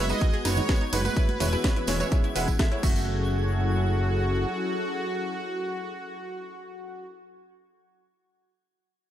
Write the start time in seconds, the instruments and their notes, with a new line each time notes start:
Already playing: analog synth bass F#1, analog synth pad G#3 B3 F#4, supersaw synth E5, synth texture G#6
0.09 grand piano G#3 F#4 B4, synth pluck D#4, supersaw synth D#5, closed hi-hat, tambourine
0.20 grand piano G#3 F#4 B4, synth pluck D#4, kick, closed hi-hat, tambourine
0.34 synth pluck G#4, closed hi-hat
0.45 analog synth bass F#1, grand piano G#3 F#4 B4, synth pluck D#4, supersaw synth C#5, snare, open hi-hat, ride, tambourine, high conga
0.57 synth pluck D#4, closed hi-hat, tambourine, low conga
0.69 grand piano G#3 F#4 B4, synth pluck G#4, kick, snare, closed hi-hat, tambourine
0.81 synth pluck D#4, closed hi-hat
0.93 analog synth bass F#1, grand piano G#3 F#4 B4, synth pluck D#4, supersaw synth B4, open hi-hat, ride, tambourine
1.05 grand piano G#3 F#4 B4, synth pluck B4, closed hi-hat, tambourine, high conga
1.16 analog synth pad E3 C#4 G#4, grand piano G#3 E4 C#5, synth pluck E4, kick, closed hi-hat, tambourine
1.29 closed hi-hat, high conga
1.40 analog synth bass E1, grand piano G#3 E4 C#5, synth pluck E4, open hi-hat, ride, tambourine, low conga
1.53 synth pluck E4, cross-stick, closed hi-hat, tambourine
1.64 grand piano G#3 E4 C#5, synth pluck B4, kick, snare, closed hi-hat, tambourine
1.76 synth pluck E4, closed hi-hat
1.87 analog synth bass E1, grand piano G#3 E4 C#5, synth pluck E4, snare, open hi-hat, ride, tambourine, high conga
2.00 grand piano G#3 E4 C#5, synth pluck C#5, closed hi-hat, tambourine, high conga
2.12 grand piano G#3 E4 C#5, synth pluck E4, kick, closed hi-hat, tambourine
2.24 synth pluck E4, closed hi-hat
2.36 analog synth bass E1, grand piano G#3 E4 F#5, synth pluck B4, open hi-hat, ride, tambourine
2.48 synth pluck E4, kick, closed hi-hat, tambourine
2.59 grand piano G#3 E4 E5, synth pluck A4, kick, cross-stick, snare, closed hi-hat, tambourine
2.72 grand piano G#3 E4 C#5, synth pluck E4, closed hi-hat
2.83 analog synth bass F#1, analog synth pad F#3 C#4 E4 G#4 A4, grand piano A3 F#4 E5, synth pluck F#4, supersaw synth F#4, kick, crash, tambourine, low conga
2.96 tambourine